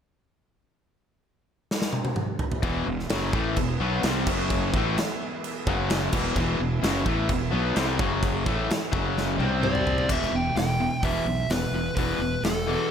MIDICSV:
0, 0, Header, 1, 6, 480
1, 0, Start_track
1, 0, Tempo, 466926
1, 780, Time_signature, 4, 2, 24, 8
1, 13270, End_track
2, 0, Start_track
2, 0, Title_t, "Lead electric guitar"
2, 0, Program_c, 0, 29
2, 9910, Note_on_c, 0, 74, 88
2, 10399, Note_off_c, 0, 74, 0
2, 10406, Note_on_c, 0, 76, 90
2, 10640, Note_off_c, 0, 76, 0
2, 10647, Note_on_c, 0, 79, 86
2, 10861, Note_off_c, 0, 79, 0
2, 10873, Note_on_c, 0, 79, 80
2, 11313, Note_off_c, 0, 79, 0
2, 11356, Note_on_c, 0, 76, 99
2, 11826, Note_on_c, 0, 71, 81
2, 11842, Note_off_c, 0, 76, 0
2, 12279, Note_off_c, 0, 71, 0
2, 12292, Note_on_c, 0, 71, 88
2, 12791, Note_off_c, 0, 71, 0
2, 12796, Note_on_c, 0, 69, 86
2, 13236, Note_off_c, 0, 69, 0
2, 13270, End_track
3, 0, Start_track
3, 0, Title_t, "Analog synth pad"
3, 0, Program_c, 1, 89
3, 2701, Note_on_c, 1, 52, 75
3, 2701, Note_on_c, 1, 59, 71
3, 2710, Note_on_c, 1, 64, 83
3, 4369, Note_off_c, 1, 59, 0
3, 4370, Note_off_c, 1, 52, 0
3, 4372, Note_on_c, 1, 61, 68
3, 4374, Note_off_c, 1, 64, 0
3, 4379, Note_on_c, 1, 54, 68
3, 4382, Note_on_c, 1, 68, 80
3, 4854, Note_on_c, 1, 64, 79
3, 4856, Note_off_c, 1, 61, 0
3, 4856, Note_on_c, 1, 59, 64
3, 4859, Note_on_c, 1, 52, 74
3, 4860, Note_off_c, 1, 54, 0
3, 4861, Note_off_c, 1, 68, 0
3, 5812, Note_off_c, 1, 64, 0
3, 5813, Note_off_c, 1, 59, 0
3, 5815, Note_off_c, 1, 52, 0
3, 5821, Note_on_c, 1, 54, 68
3, 5826, Note_on_c, 1, 61, 65
3, 5826, Note_on_c, 1, 68, 87
3, 6288, Note_on_c, 1, 52, 80
3, 6290, Note_on_c, 1, 64, 90
3, 6292, Note_on_c, 1, 59, 71
3, 6300, Note_off_c, 1, 54, 0
3, 6302, Note_off_c, 1, 61, 0
3, 6302, Note_off_c, 1, 68, 0
3, 8195, Note_off_c, 1, 52, 0
3, 8196, Note_off_c, 1, 64, 0
3, 8198, Note_off_c, 1, 59, 0
3, 8234, Note_on_c, 1, 54, 69
3, 8241, Note_on_c, 1, 68, 83
3, 8248, Note_on_c, 1, 61, 69
3, 8704, Note_off_c, 1, 54, 0
3, 8706, Note_on_c, 1, 52, 70
3, 8707, Note_off_c, 1, 68, 0
3, 8709, Note_on_c, 1, 59, 65
3, 8711, Note_off_c, 1, 61, 0
3, 8714, Note_on_c, 1, 64, 79
3, 9179, Note_off_c, 1, 52, 0
3, 9180, Note_off_c, 1, 59, 0
3, 9183, Note_off_c, 1, 64, 0
3, 9189, Note_on_c, 1, 61, 63
3, 9196, Note_on_c, 1, 68, 82
3, 9198, Note_on_c, 1, 54, 75
3, 9656, Note_on_c, 1, 60, 76
3, 9658, Note_on_c, 1, 74, 77
3, 9660, Note_off_c, 1, 61, 0
3, 9661, Note_on_c, 1, 67, 63
3, 9664, Note_off_c, 1, 68, 0
3, 9665, Note_off_c, 1, 54, 0
3, 10370, Note_off_c, 1, 60, 0
3, 10371, Note_off_c, 1, 74, 0
3, 10373, Note_off_c, 1, 67, 0
3, 13270, End_track
4, 0, Start_track
4, 0, Title_t, "Overdriven electric guitar"
4, 0, Program_c, 2, 29
4, 2700, Note_on_c, 2, 40, 76
4, 2708, Note_on_c, 2, 47, 100
4, 2714, Note_on_c, 2, 52, 100
4, 2936, Note_off_c, 2, 40, 0
4, 2940, Note_off_c, 2, 47, 0
4, 2943, Note_off_c, 2, 52, 0
4, 2951, Note_on_c, 2, 40, 56
4, 2962, Note_on_c, 2, 47, 61
4, 3141, Note_off_c, 2, 40, 0
4, 3146, Note_off_c, 2, 47, 0
4, 3191, Note_on_c, 2, 42, 82
4, 3194, Note_on_c, 2, 49, 90
4, 3204, Note_on_c, 2, 54, 108
4, 3420, Note_off_c, 2, 49, 0
4, 3422, Note_off_c, 2, 42, 0
4, 3425, Note_on_c, 2, 45, 96
4, 3426, Note_off_c, 2, 54, 0
4, 3430, Note_on_c, 2, 52, 98
4, 3439, Note_on_c, 2, 57, 115
4, 3659, Note_off_c, 2, 45, 0
4, 3662, Note_off_c, 2, 52, 0
4, 3666, Note_off_c, 2, 57, 0
4, 3674, Note_on_c, 2, 40, 65
4, 3683, Note_on_c, 2, 47, 73
4, 3863, Note_off_c, 2, 40, 0
4, 3868, Note_off_c, 2, 47, 0
4, 3908, Note_on_c, 2, 47, 85
4, 3915, Note_on_c, 2, 54, 82
4, 3924, Note_on_c, 2, 59, 88
4, 4141, Note_off_c, 2, 47, 0
4, 4145, Note_off_c, 2, 54, 0
4, 4149, Note_off_c, 2, 59, 0
4, 4176, Note_on_c, 2, 48, 82
4, 4178, Note_on_c, 2, 55, 97
4, 4184, Note_on_c, 2, 60, 100
4, 4399, Note_off_c, 2, 60, 0
4, 4405, Note_on_c, 2, 42, 88
4, 4418, Note_off_c, 2, 48, 0
4, 4418, Note_on_c, 2, 49, 91
4, 4420, Note_off_c, 2, 55, 0
4, 4420, Note_on_c, 2, 54, 81
4, 4870, Note_off_c, 2, 42, 0
4, 4877, Note_off_c, 2, 49, 0
4, 4878, Note_off_c, 2, 54, 0
4, 4891, Note_on_c, 2, 45, 80
4, 4891, Note_on_c, 2, 52, 84
4, 4904, Note_on_c, 2, 57, 99
4, 5113, Note_off_c, 2, 45, 0
4, 5113, Note_off_c, 2, 52, 0
4, 5119, Note_off_c, 2, 57, 0
4, 5836, Note_on_c, 2, 42, 85
4, 5840, Note_on_c, 2, 49, 88
4, 5847, Note_on_c, 2, 54, 99
4, 6305, Note_off_c, 2, 42, 0
4, 6307, Note_off_c, 2, 49, 0
4, 6311, Note_off_c, 2, 54, 0
4, 6311, Note_on_c, 2, 40, 95
4, 6314, Note_on_c, 2, 47, 87
4, 6319, Note_on_c, 2, 52, 92
4, 6525, Note_off_c, 2, 40, 0
4, 6535, Note_off_c, 2, 47, 0
4, 6538, Note_on_c, 2, 40, 92
4, 6541, Note_off_c, 2, 52, 0
4, 6547, Note_on_c, 2, 47, 101
4, 6553, Note_on_c, 2, 52, 111
4, 6768, Note_off_c, 2, 40, 0
4, 6776, Note_off_c, 2, 47, 0
4, 6781, Note_on_c, 2, 40, 59
4, 6783, Note_off_c, 2, 52, 0
4, 6788, Note_on_c, 2, 47, 66
4, 6976, Note_off_c, 2, 40, 0
4, 6980, Note_off_c, 2, 47, 0
4, 7007, Note_on_c, 2, 42, 92
4, 7019, Note_on_c, 2, 49, 101
4, 7028, Note_on_c, 2, 54, 104
4, 7241, Note_off_c, 2, 49, 0
4, 7245, Note_on_c, 2, 45, 93
4, 7250, Note_off_c, 2, 42, 0
4, 7250, Note_off_c, 2, 54, 0
4, 7254, Note_on_c, 2, 52, 99
4, 7261, Note_on_c, 2, 57, 101
4, 7481, Note_on_c, 2, 40, 72
4, 7484, Note_off_c, 2, 45, 0
4, 7488, Note_on_c, 2, 47, 79
4, 7493, Note_off_c, 2, 52, 0
4, 7496, Note_off_c, 2, 57, 0
4, 7686, Note_off_c, 2, 40, 0
4, 7689, Note_off_c, 2, 47, 0
4, 7721, Note_on_c, 2, 47, 80
4, 7732, Note_on_c, 2, 54, 91
4, 7737, Note_on_c, 2, 59, 92
4, 7966, Note_off_c, 2, 47, 0
4, 7971, Note_off_c, 2, 54, 0
4, 7972, Note_on_c, 2, 48, 88
4, 7974, Note_off_c, 2, 59, 0
4, 7980, Note_on_c, 2, 55, 86
4, 7982, Note_on_c, 2, 60, 100
4, 8211, Note_off_c, 2, 48, 0
4, 8211, Note_on_c, 2, 42, 91
4, 8215, Note_off_c, 2, 55, 0
4, 8216, Note_off_c, 2, 60, 0
4, 8217, Note_on_c, 2, 49, 88
4, 8220, Note_on_c, 2, 54, 92
4, 8690, Note_off_c, 2, 42, 0
4, 8692, Note_off_c, 2, 49, 0
4, 8694, Note_off_c, 2, 54, 0
4, 8696, Note_on_c, 2, 45, 95
4, 8698, Note_on_c, 2, 52, 87
4, 8707, Note_on_c, 2, 57, 94
4, 8932, Note_off_c, 2, 45, 0
4, 8933, Note_off_c, 2, 52, 0
4, 8938, Note_off_c, 2, 57, 0
4, 9168, Note_on_c, 2, 42, 84
4, 9171, Note_on_c, 2, 49, 101
4, 9176, Note_on_c, 2, 54, 95
4, 9640, Note_off_c, 2, 49, 0
4, 9643, Note_off_c, 2, 54, 0
4, 9644, Note_on_c, 2, 48, 78
4, 9647, Note_off_c, 2, 42, 0
4, 9647, Note_on_c, 2, 55, 90
4, 9657, Note_on_c, 2, 60, 100
4, 10360, Note_on_c, 2, 40, 77
4, 10365, Note_off_c, 2, 48, 0
4, 10366, Note_off_c, 2, 55, 0
4, 10371, Note_off_c, 2, 60, 0
4, 10371, Note_on_c, 2, 47, 76
4, 10376, Note_on_c, 2, 52, 86
4, 10596, Note_off_c, 2, 40, 0
4, 10601, Note_off_c, 2, 47, 0
4, 10604, Note_off_c, 2, 52, 0
4, 10609, Note_on_c, 2, 40, 65
4, 10617, Note_on_c, 2, 47, 70
4, 10830, Note_off_c, 2, 40, 0
4, 10835, Note_off_c, 2, 47, 0
4, 10850, Note_on_c, 2, 40, 64
4, 10853, Note_on_c, 2, 47, 70
4, 11071, Note_off_c, 2, 40, 0
4, 11072, Note_off_c, 2, 47, 0
4, 11102, Note_on_c, 2, 40, 66
4, 11110, Note_on_c, 2, 47, 81
4, 11317, Note_off_c, 2, 40, 0
4, 11321, Note_off_c, 2, 47, 0
4, 11352, Note_on_c, 2, 40, 85
4, 11358, Note_on_c, 2, 47, 81
4, 11360, Note_on_c, 2, 52, 97
4, 11571, Note_off_c, 2, 40, 0
4, 11574, Note_off_c, 2, 47, 0
4, 11575, Note_off_c, 2, 52, 0
4, 11583, Note_on_c, 2, 40, 64
4, 11587, Note_on_c, 2, 47, 65
4, 11797, Note_off_c, 2, 40, 0
4, 11799, Note_off_c, 2, 47, 0
4, 11836, Note_on_c, 2, 47, 75
4, 11837, Note_on_c, 2, 40, 63
4, 12044, Note_off_c, 2, 40, 0
4, 12044, Note_off_c, 2, 47, 0
4, 12078, Note_on_c, 2, 40, 63
4, 12085, Note_on_c, 2, 47, 69
4, 12285, Note_off_c, 2, 40, 0
4, 12288, Note_off_c, 2, 47, 0
4, 12313, Note_on_c, 2, 40, 83
4, 12321, Note_on_c, 2, 47, 79
4, 12323, Note_on_c, 2, 52, 89
4, 12532, Note_off_c, 2, 40, 0
4, 12536, Note_off_c, 2, 47, 0
4, 12537, Note_off_c, 2, 52, 0
4, 12555, Note_on_c, 2, 40, 58
4, 12558, Note_on_c, 2, 47, 66
4, 12764, Note_off_c, 2, 40, 0
4, 12765, Note_off_c, 2, 47, 0
4, 12798, Note_on_c, 2, 40, 77
4, 12803, Note_on_c, 2, 47, 81
4, 13005, Note_off_c, 2, 40, 0
4, 13008, Note_off_c, 2, 47, 0
4, 13019, Note_on_c, 2, 40, 85
4, 13026, Note_on_c, 2, 47, 91
4, 13037, Note_on_c, 2, 52, 104
4, 13246, Note_off_c, 2, 40, 0
4, 13249, Note_off_c, 2, 47, 0
4, 13255, Note_off_c, 2, 52, 0
4, 13270, End_track
5, 0, Start_track
5, 0, Title_t, "Fingered electric bass"
5, 0, Program_c, 3, 33
5, 2702, Note_on_c, 3, 28, 97
5, 2928, Note_off_c, 3, 28, 0
5, 2941, Note_on_c, 3, 28, 88
5, 3167, Note_off_c, 3, 28, 0
5, 3191, Note_on_c, 3, 30, 89
5, 3413, Note_off_c, 3, 30, 0
5, 3426, Note_on_c, 3, 33, 90
5, 3650, Note_off_c, 3, 33, 0
5, 3669, Note_on_c, 3, 28, 72
5, 3892, Note_off_c, 3, 28, 0
5, 3909, Note_on_c, 3, 35, 109
5, 4132, Note_off_c, 3, 35, 0
5, 4147, Note_on_c, 3, 36, 94
5, 4371, Note_off_c, 3, 36, 0
5, 4388, Note_on_c, 3, 30, 82
5, 4835, Note_off_c, 3, 30, 0
5, 4863, Note_on_c, 3, 33, 99
5, 5089, Note_off_c, 3, 33, 0
5, 5828, Note_on_c, 3, 30, 100
5, 6275, Note_off_c, 3, 30, 0
5, 6302, Note_on_c, 3, 28, 86
5, 6528, Note_off_c, 3, 28, 0
5, 6533, Note_on_c, 3, 28, 103
5, 6763, Note_off_c, 3, 28, 0
5, 6779, Note_on_c, 3, 28, 82
5, 7006, Note_off_c, 3, 28, 0
5, 7016, Note_on_c, 3, 30, 89
5, 7244, Note_off_c, 3, 30, 0
5, 7254, Note_on_c, 3, 33, 94
5, 7483, Note_off_c, 3, 33, 0
5, 7493, Note_on_c, 3, 28, 72
5, 7722, Note_off_c, 3, 28, 0
5, 7736, Note_on_c, 3, 35, 107
5, 7964, Note_off_c, 3, 35, 0
5, 7983, Note_on_c, 3, 36, 92
5, 8207, Note_off_c, 3, 36, 0
5, 8220, Note_on_c, 3, 30, 79
5, 8668, Note_off_c, 3, 30, 0
5, 8704, Note_on_c, 3, 33, 93
5, 8927, Note_off_c, 3, 33, 0
5, 9178, Note_on_c, 3, 30, 89
5, 9626, Note_off_c, 3, 30, 0
5, 9649, Note_on_c, 3, 36, 94
5, 10333, Note_off_c, 3, 36, 0
5, 10379, Note_on_c, 3, 28, 89
5, 10543, Note_off_c, 3, 28, 0
5, 10619, Note_on_c, 3, 28, 89
5, 10783, Note_off_c, 3, 28, 0
5, 10845, Note_on_c, 3, 28, 76
5, 11178, Note_off_c, 3, 28, 0
5, 11335, Note_on_c, 3, 28, 76
5, 11500, Note_off_c, 3, 28, 0
5, 11570, Note_on_c, 3, 35, 93
5, 11737, Note_off_c, 3, 35, 0
5, 11810, Note_on_c, 3, 28, 85
5, 11977, Note_off_c, 3, 28, 0
5, 12043, Note_on_c, 3, 28, 72
5, 12213, Note_off_c, 3, 28, 0
5, 12300, Note_on_c, 3, 28, 84
5, 12464, Note_off_c, 3, 28, 0
5, 12533, Note_on_c, 3, 28, 86
5, 12699, Note_off_c, 3, 28, 0
5, 12778, Note_on_c, 3, 28, 78
5, 13107, Note_off_c, 3, 28, 0
5, 13270, End_track
6, 0, Start_track
6, 0, Title_t, "Drums"
6, 1759, Note_on_c, 9, 38, 70
6, 1862, Note_off_c, 9, 38, 0
6, 1867, Note_on_c, 9, 38, 71
6, 1970, Note_off_c, 9, 38, 0
6, 1981, Note_on_c, 9, 48, 76
6, 2083, Note_off_c, 9, 48, 0
6, 2104, Note_on_c, 9, 48, 86
6, 2206, Note_off_c, 9, 48, 0
6, 2220, Note_on_c, 9, 47, 80
6, 2323, Note_off_c, 9, 47, 0
6, 2459, Note_on_c, 9, 43, 103
6, 2562, Note_off_c, 9, 43, 0
6, 2586, Note_on_c, 9, 43, 102
6, 2688, Note_off_c, 9, 43, 0
6, 2703, Note_on_c, 9, 36, 101
6, 2706, Note_on_c, 9, 49, 56
6, 2806, Note_off_c, 9, 36, 0
6, 2809, Note_off_c, 9, 49, 0
6, 3078, Note_on_c, 9, 38, 31
6, 3181, Note_off_c, 9, 38, 0
6, 3181, Note_on_c, 9, 49, 60
6, 3191, Note_on_c, 9, 38, 108
6, 3283, Note_off_c, 9, 49, 0
6, 3294, Note_off_c, 9, 38, 0
6, 3426, Note_on_c, 9, 36, 106
6, 3529, Note_off_c, 9, 36, 0
6, 3663, Note_on_c, 9, 49, 65
6, 3669, Note_on_c, 9, 36, 90
6, 3766, Note_off_c, 9, 49, 0
6, 3772, Note_off_c, 9, 36, 0
6, 4144, Note_on_c, 9, 49, 65
6, 4154, Note_on_c, 9, 38, 100
6, 4247, Note_off_c, 9, 49, 0
6, 4257, Note_off_c, 9, 38, 0
6, 4385, Note_on_c, 9, 49, 95
6, 4388, Note_on_c, 9, 36, 99
6, 4488, Note_off_c, 9, 49, 0
6, 4491, Note_off_c, 9, 36, 0
6, 4627, Note_on_c, 9, 49, 56
6, 4629, Note_on_c, 9, 36, 93
6, 4729, Note_off_c, 9, 49, 0
6, 4732, Note_off_c, 9, 36, 0
6, 4869, Note_on_c, 9, 36, 101
6, 4972, Note_off_c, 9, 36, 0
6, 5116, Note_on_c, 9, 49, 57
6, 5126, Note_on_c, 9, 38, 105
6, 5218, Note_off_c, 9, 49, 0
6, 5229, Note_off_c, 9, 38, 0
6, 5592, Note_on_c, 9, 49, 58
6, 5695, Note_off_c, 9, 49, 0
6, 5828, Note_on_c, 9, 36, 95
6, 5931, Note_off_c, 9, 36, 0
6, 6063, Note_on_c, 9, 49, 53
6, 6073, Note_on_c, 9, 38, 113
6, 6166, Note_off_c, 9, 49, 0
6, 6176, Note_off_c, 9, 38, 0
6, 6296, Note_on_c, 9, 49, 95
6, 6302, Note_on_c, 9, 36, 112
6, 6399, Note_off_c, 9, 49, 0
6, 6404, Note_off_c, 9, 36, 0
6, 6539, Note_on_c, 9, 36, 94
6, 6540, Note_on_c, 9, 49, 54
6, 6642, Note_off_c, 9, 36, 0
6, 6643, Note_off_c, 9, 49, 0
6, 7025, Note_on_c, 9, 49, 63
6, 7036, Note_on_c, 9, 38, 106
6, 7128, Note_off_c, 9, 49, 0
6, 7139, Note_off_c, 9, 38, 0
6, 7257, Note_on_c, 9, 36, 107
6, 7360, Note_off_c, 9, 36, 0
6, 7492, Note_on_c, 9, 49, 59
6, 7496, Note_on_c, 9, 36, 93
6, 7595, Note_off_c, 9, 49, 0
6, 7599, Note_off_c, 9, 36, 0
6, 7975, Note_on_c, 9, 49, 55
6, 7986, Note_on_c, 9, 38, 95
6, 8078, Note_off_c, 9, 49, 0
6, 8088, Note_off_c, 9, 38, 0
6, 8217, Note_on_c, 9, 36, 119
6, 8320, Note_off_c, 9, 36, 0
6, 8457, Note_on_c, 9, 36, 99
6, 8463, Note_on_c, 9, 49, 61
6, 8560, Note_off_c, 9, 36, 0
6, 8566, Note_off_c, 9, 49, 0
6, 8700, Note_on_c, 9, 36, 100
6, 8803, Note_off_c, 9, 36, 0
6, 8948, Note_on_c, 9, 49, 57
6, 8958, Note_on_c, 9, 38, 105
6, 9051, Note_off_c, 9, 49, 0
6, 9061, Note_off_c, 9, 38, 0
6, 9179, Note_on_c, 9, 36, 109
6, 9282, Note_off_c, 9, 36, 0
6, 9433, Note_on_c, 9, 38, 62
6, 9536, Note_off_c, 9, 38, 0
6, 9666, Note_on_c, 9, 48, 66
6, 9769, Note_off_c, 9, 48, 0
6, 9903, Note_on_c, 9, 47, 85
6, 10006, Note_off_c, 9, 47, 0
6, 10023, Note_on_c, 9, 45, 75
6, 10126, Note_off_c, 9, 45, 0
6, 10145, Note_on_c, 9, 43, 99
6, 10247, Note_off_c, 9, 43, 0
6, 10261, Note_on_c, 9, 43, 88
6, 10363, Note_off_c, 9, 43, 0
6, 10375, Note_on_c, 9, 36, 91
6, 10376, Note_on_c, 9, 57, 91
6, 10478, Note_off_c, 9, 36, 0
6, 10479, Note_off_c, 9, 57, 0
6, 10512, Note_on_c, 9, 38, 34
6, 10615, Note_off_c, 9, 38, 0
6, 10860, Note_on_c, 9, 46, 50
6, 10870, Note_on_c, 9, 38, 93
6, 10963, Note_off_c, 9, 46, 0
6, 10973, Note_off_c, 9, 38, 0
6, 11339, Note_on_c, 9, 36, 99
6, 11344, Note_on_c, 9, 46, 53
6, 11442, Note_off_c, 9, 36, 0
6, 11447, Note_off_c, 9, 46, 0
6, 11820, Note_on_c, 9, 46, 52
6, 11830, Note_on_c, 9, 38, 99
6, 11923, Note_off_c, 9, 46, 0
6, 11933, Note_off_c, 9, 38, 0
6, 12301, Note_on_c, 9, 46, 51
6, 12303, Note_on_c, 9, 36, 95
6, 12404, Note_off_c, 9, 46, 0
6, 12406, Note_off_c, 9, 36, 0
6, 12786, Note_on_c, 9, 46, 50
6, 12796, Note_on_c, 9, 38, 98
6, 12889, Note_off_c, 9, 46, 0
6, 12899, Note_off_c, 9, 38, 0
6, 13270, End_track
0, 0, End_of_file